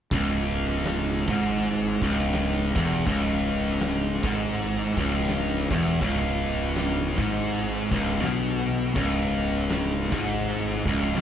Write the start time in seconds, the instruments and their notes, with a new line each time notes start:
0.11 fingered electric bass C#1, distorted electric guitar C#2, kick, crash
0.71 snare
0.85 snare, crash
1.28 fingered electric bass G#1, distorted electric guitar G#2, kick
1.59 crash
2.02 fingered electric bass C#1, distorted electric guitar C#2, kick
2.33 snare, crash
2.76 fingered electric bass E1, distorted electric guitar E2, kick
3.06 fingered electric bass C#1, distorted electric guitar C#2, kick, crash
3.66 snare
3.80 snare, crash
4.23 fingered electric bass G#1, distorted electric guitar G#2, kick
4.55 crash
4.97 fingered electric bass C#1, distorted electric guitar C#2, kick
5.28 snare, crash
5.71 fingered electric bass E1, distorted electric guitar E2, kick
6.01 fingered electric bass C#1, distorted electric guitar C#2, kick, crash
6.75 snare, crash
7.18 fingered electric bass G#1, distorted electric guitar G#2, kick
7.49 crash
7.91 fingered electric bass C#1, distorted electric guitar C#2, kick
8.08 snare
8.21 fingered electric bass B1, distorted electric guitar B2, snare, crash
8.95 fingered electric bass C#1, distorted electric guitar C#2, kick, crash
9.69 snare, crash
10.12 fingered electric bass G#1, distorted electric guitar G#2, kick
10.42 crash
10.86 fingered electric bass C#1, distorted electric guitar C#2, kick
11.16 fingered electric bass B1, distorted electric guitar B2, snare, crash